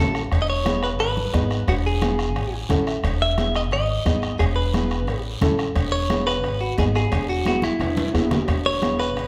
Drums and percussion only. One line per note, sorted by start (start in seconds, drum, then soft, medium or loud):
0.15 bombo rim medium
0.15 short guiro medium
0.32 bombo low medium
0.32 bombo rim medium
0.32 cowbell loud
0.32 long guiro medium
0.66 bombo rim medium
0.66 cowbell medium
0.66 high conga medium
0.66 short guiro medium
0.83 bombo rim medium
0.83 short guiro medium
1.00 bombo rim medium
1.00 cowbell medium
1.00 long guiro medium
1.17 high conga medium
1.34 bombo low medium
1.34 bombo rim medium
1.34 cowbell medium
1.34 high conga medium
1.34 short guiro medium
1.51 bombo rim medium
1.51 short guiro medium
1.68 bombo low medium
1.68 bombo rim medium
1.68 cowbell loud
1.68 long guiro medium
2.02 bombo rim medium
2.02 cowbell medium
2.02 high conga medium
2.02 short guiro medium
2.19 bombo rim medium
2.19 short guiro medium
2.36 bombo rim medium
2.36 cowbell medium
2.36 long guiro medium
2.70 bombo low medium
2.70 bombo rim medium
2.70 cowbell medium
2.70 high conga medium
2.70 low conga medium
2.70 short guiro medium
2.87 bombo rim medium
2.87 short guiro medium
3.04 bombo low medium
3.04 bombo rim medium
3.04 cowbell loud
3.04 long guiro medium
3.38 bombo rim medium
3.38 cowbell medium
3.38 high conga medium
3.38 short guiro medium
3.55 bombo rim medium
3.55 short guiro medium
3.71 bombo rim medium
3.71 cowbell medium
3.71 long guiro medium
4.06 bombo low medium
4.06 bombo rim medium
4.06 cowbell medium
4.06 high conga medium
4.06 short guiro medium
4.22 bombo rim medium
4.22 short guiro medium
4.40 bombo low medium
4.40 bombo rim medium
4.40 cowbell loud
4.40 long guiro medium
4.74 bombo rim medium
4.74 cowbell medium
4.74 high conga medium
4.74 short guiro medium
4.90 bombo rim medium
4.90 short guiro medium
5.07 bombo rim medium
5.07 cowbell medium
5.07 long guiro medium
5.41 bombo low medium
5.41 bombo rim medium
5.41 cowbell medium
5.41 high conga medium
5.41 low conga medium
5.41 short guiro medium
5.59 bombo rim medium
5.59 short guiro medium
5.76 bombo low medium
5.76 bombo rim medium
5.76 cowbell loud
5.76 long guiro medium
6.10 bombo rim medium
6.10 cowbell medium
6.10 high conga medium
6.10 short guiro medium
6.27 bombo rim medium
6.27 short guiro medium
6.44 bombo rim medium
6.44 cowbell medium
6.44 long guiro medium
6.78 bombo low medium
6.78 bombo rim medium
6.78 cowbell medium
6.78 high conga medium
6.78 low timbale medium
6.78 short guiro medium
6.95 bombo rim medium
6.95 short guiro medium
7.12 bombo low medium
7.12 bombo rim medium
7.12 cowbell loud
7.12 long guiro medium
7.46 bombo rim medium
7.46 cowbell medium
7.46 high conga medium
7.46 short guiro medium
7.62 bombo rim medium
7.62 high conga medium
7.62 short guiro medium
7.80 bombo rim medium
7.80 cowbell medium
7.80 high timbale medium
7.80 long guiro medium
7.97 high conga medium
7.97 high timbale medium
8.15 bombo low medium
8.15 bombo rim medium
8.15 cowbell medium
8.15 low timbale medium
8.15 short guiro medium
8.31 bombo rim medium
8.31 low conga medium
8.31 low timbale loud
8.31 short guiro medium
8.48 bombo low medium
8.48 bombo rim medium
8.48 cowbell loud
8.48 long guiro medium
8.82 bombo rim medium
8.82 cowbell medium
8.82 high conga medium
8.82 short guiro medium
9.00 bombo rim medium
9.00 short guiro medium
9.17 bombo rim medium
9.17 cowbell medium
9.17 long guiro medium